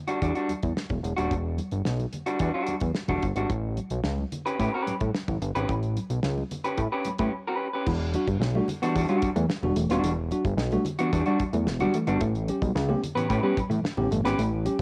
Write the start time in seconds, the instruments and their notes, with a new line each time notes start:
0.08 clean electric guitar G3 D4 F#4, closed hi-hat
0.22 analog synth bass E2, clean electric guitar G3 D4 F#4, kick, closed hi-hat
0.35 clean electric guitar G3 D4 F#4, closed hi-hat
0.49 analog synth bass E2, closed hi-hat, high conga
0.63 analog synth bass E2, kick, closed hi-hat, high conga
0.77 snare, muted conga
0.89 analog synth bass E1, kick, closed hi-hat, high conga, low conga
1.03 analog synth bass E1, closed hi-hat
1.17 analog synth bass D#1, clean electric guitar G3 D4 F#4, closed hi-hat
1.31 analog synth bass E1, kick, closed hi-hat, muted conga
1.58 closed hi-hat, muted conga, high conga
1.71 analog synth bass G1, closed hi-hat, high conga
1.85 analog synth bass B1, snare, muted conga
1.99 closed hi-hat, high conga
2.13 closed hi-hat, low conga
2.26 clean electric guitar G3 D4 F#4, closed hi-hat
2.39 analog synth bass E2, clean electric guitar G3 D4 F#4, kick, closed hi-hat, muted conga
2.54 clean electric guitar G3 D4 F#4
2.67 analog synth bass E2, closed hi-hat, high conga
2.80 analog synth bass E2, kick, closed hi-hat, high conga
2.95 snare, muted conga
3.08 analog synth bass E1, clean electric guitar G3 D4 F#4, kick, closed hi-hat, high conga, low conga
3.22 analog synth bass G1, kick, closed hi-hat, muted conga
3.36 analog synth bass G#1, clean electric guitar G3 D4 F#4, closed hi-hat
3.49 analog synth bass A1, kick, closed hi-hat, muted conga
3.77 closed hi-hat, high conga
3.90 analog synth bass B1, closed hi-hat, high conga
4.04 analog synth bass C#2, snare
4.18 high conga
4.32 closed hi-hat, muted conga, low conga
4.46 clean electric guitar C#4 G4 B4, closed hi-hat
4.59 analog synth bass A2, clean electric guitar C#4 G4 B4, kick, closed hi-hat
4.74 clean electric guitar C#4 G4 B4
4.87 analog synth bass A2, closed hi-hat, muted conga, high conga
5.00 analog synth bass A2, kick, closed hi-hat, high conga
5.15 snare, muted conga
5.28 analog synth bass A1, kick, closed hi-hat, high conga, low conga
5.42 analog synth bass G1, closed hi-hat
5.55 analog synth bass G#1, clean electric guitar C#4 G4 B4, closed hi-hat
5.69 analog synth bass A1, kick, closed hi-hat, muted conga
5.83 closed hi-hat
5.97 closed hi-hat, muted conga, high conga
6.10 analog synth bass B1, closed hi-hat, high conga
6.23 analog synth bass C#2, snare
6.38 high conga
6.51 closed hi-hat, muted conga, low conga
6.64 clean electric guitar C#4 G4 B4, closed hi-hat
6.78 analog synth bass A2, kick, closed hi-hat, muted conga
6.92 clean electric guitar C#4 G4 B4
7.05 analog synth bass A2, closed hi-hat, muted conga, high conga
7.18 analog synth bass A2, clean electric guitar C#4 G4 B4, kick, closed hi-hat, high conga
7.47 clean electric guitar C#4 G4 B4
7.73 clean electric guitar C#4 G4 B4
7.86 analog synth bass E1, clean electric guitar E3, tine electric piano E3, kick, crash, muted conga
8.14 tine electric piano D4 F#4, muted clean electric guitar stroke, closed hi-hat, high conga
8.27 analog synth bass G1, clean electric guitar G3, kick, closed hi-hat, high conga
8.40 analog synth bass B1, snare
8.55 tine electric piano G3 D4 F#4, clean electric guitar A3, high conga
8.68 muted clean electric guitar stroke, closed hi-hat, muted conga, low conga
8.82 tine electric piano E3, clean electric guitar G3 B3 D4 F#4, closed hi-hat
8.95 analog synth bass E2, clean electric guitar G3 D4 F#4, kick, closed hi-hat
9.09 clean electric guitar G3 D4 F#4, tine electric piano G3 D4 F#4, closed hi-hat
9.22 analog synth bass E2, muted clean electric guitar stroke, kick, closed hi-hat, muted conga, high conga
9.36 analog synth bass E2, tine electric piano E3, clean electric guitar A3, closed hi-hat, high conga
9.49 muted clean electric guitar stroke, snare, muted conga
9.63 analog synth bass E1, tine electric piano G3 D4 F#4, high conga, low conga
9.76 analog synth bass E1, tine electric piano E3, clean electric guitar A3, closed hi-hat, muted conga
9.89 analog synth bass D#1, tine electric piano G3 D4 F#4, clean electric guitar G3 B3 D4 F#4, snare, closed hi-hat
10.03 analog synth bass E1, clean electric guitar E3, tine electric piano E3, closed hi-hat, muted conga
10.31 tine electric piano D4 F#4, muted clean electric guitar stroke, closed hi-hat, high conga
10.45 analog synth bass G1, clean electric guitar G3, kick, closed hi-hat, high conga
10.57 analog synth bass B1, snare, muted conga
10.71 tine electric piano G3 D4 F#4, clean electric guitar A3, closed hi-hat, high conga
10.85 muted clean electric guitar stroke, closed hi-hat, muted conga, low conga
10.99 tine electric piano E3, clean electric guitar G3 B3 D4 F#4, closed hi-hat
11.13 analog synth bass E2, clean electric guitar G3 D4 F#4, kick, closed hi-hat, muted conga
11.26 tine electric piano G3 D4 F#4, clean electric guitar G3 D4 F#4, closed hi-hat
11.39 analog synth bass E2, muted clean electric guitar stroke, kick, closed hi-hat, muted conga, high conga
11.53 analog synth bass E2, tine electric piano E3, clean electric guitar A3, closed hi-hat, high conga
11.67 analog synth bass E1, muted clean electric guitar stroke, snare, muted conga
11.80 tine electric piano G3 D4 F#4, clean electric guitar G3 D4 F#4, closed hi-hat, high conga, low conga
11.94 tine electric piano E3, clean electric guitar A3, closed hi-hat
12.07 analog synth bass G1, tine electric piano G3 D4 F#4, clean electric guitar G3 B3 D4 F#4, closed hi-hat
12.21 analog synth bass A1, tine electric piano A2 E3, clean electric guitar A3, kick, closed hi-hat
12.35 closed hi-hat
12.48 tine electric piano C#4 G4, muted clean electric guitar stroke, closed hi-hat, high conga
12.62 analog synth bass B1, clean electric guitar G3, kick, closed hi-hat, high conga
12.75 analog synth bass C#2, snare
12.89 clean electric guitar A3, tine electric piano B3 C#4 G4, high conga
13.03 muted clean electric guitar stroke, closed hi-hat, muted conga, low conga
13.15 tine electric piano A2 E3, clean electric guitar B3 C#4 G4 B4, closed hi-hat
13.29 analog synth bass A2, clean electric guitar C#4 G4 B4, kick, closed hi-hat, muted conga
13.43 clean electric guitar G3 C#4 G4 B4, tine electric piano B3 C#4 G4
13.57 analog synth bass A2, muted clean electric guitar stroke, kick, closed hi-hat, muted conga, high conga
13.70 analog synth bass A2, tine electric piano A2 E3, clean electric guitar A3, closed hi-hat, high conga
13.84 muted clean electric guitar stroke, snare, muted conga
13.97 analog synth bass A1, tine electric piano B3 C#4 G4, high conga, low conga
14.10 analog synth bass G1, tine electric piano A2 E3, clean electric guitar A3, closed hi-hat, muted conga
14.24 analog synth bass G#1, tine electric piano B3 C#4 G4, clean electric guitar B3 C#4 G4 B4, snare, closed hi-hat
14.38 analog synth bass A1, tine electric piano A2 E3, clean electric guitar A3, closed hi-hat, muted conga
14.65 tine electric piano C#4 G4, muted clean electric guitar stroke, closed hi-hat, high conga